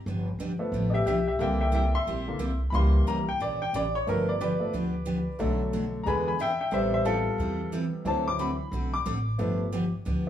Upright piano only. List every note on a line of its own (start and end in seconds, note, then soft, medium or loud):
0.59 1.03 F3 medium
0.59 1.04 A3 medium
0.59 1.04 B3 medium
0.90 1.05 G4 medium
0.90 0.92 D#5 medium
0.94 1.06 E5 medium
1.06 1.25 G4 medium
1.06 1.26 E5 medium
1.27 1.39 G4 medium
1.27 1.39 E5 medium
1.39 1.91 D3 medium
1.39 1.91 E3 soft
1.39 1.91 A#3 medium
1.39 1.59 E5 medium
1.39 1.60 G5 medium
1.61 1.72 E5 medium
1.61 1.73 G5 medium
1.74 1.93 E5 medium
1.74 1.94 G5 medium
1.95 2.57 E5 medium
1.95 2.59 C6 loud
2.28 2.39 D3 soft
2.28 2.39 E3 soft
2.28 2.39 A#3 medium
2.70 3.24 E3 medium
2.70 3.24 G3 medium
2.70 3.24 A#3 medium
2.70 2.73 B5 medium
2.75 3.06 C6 loud
3.08 3.27 A#5 medium
3.29 3.40 G5 medium
3.42 3.60 D5 medium
3.62 3.73 G5 medium
3.76 3.94 D5 loud
3.95 4.07 C#5 loud
4.07 4.31 F3 medium
4.07 4.31 A3 soft
4.07 4.32 B3 medium
4.07 4.28 A#4 medium
4.29 4.40 D5 medium
4.41 5.36 B4 medium
4.41 5.37 D5 medium
4.60 4.71 F3 soft
4.60 4.71 A3 soft
4.60 4.72 B3 soft
5.39 6.02 D3 medium
5.39 6.02 F#3 medium
5.39 6.03 A3 medium
6.03 6.30 D3 medium
6.03 6.30 G#3 medium
6.03 6.31 B3 medium
6.03 6.25 G#5 medium
6.03 6.06 A#5 medium
6.08 6.27 B5 medium
6.27 6.39 G#5 medium
6.27 6.40 B5 medium
6.41 6.59 E5 medium
6.41 6.59 G5 loud
6.60 6.72 E5 medium
6.60 6.73 G5 medium
6.72 8.01 C3 medium
6.72 8.01 G3 medium
6.72 8.02 B3 medium
6.72 6.92 C5 medium
6.72 6.92 E5 medium
6.94 7.05 C5 medium
6.94 7.06 E5 medium
7.05 7.68 F4 medium
7.05 7.70 A4 loud
8.05 8.56 E3 medium
8.05 8.57 F#3 soft
8.05 8.57 C4 medium
8.05 8.26 A5 loud
8.28 8.39 D6 medium
8.40 8.92 B5 medium
8.94 9.90 D6 medium
9.38 9.63 F3 medium
9.38 9.63 A3 medium
9.38 9.63 B3 medium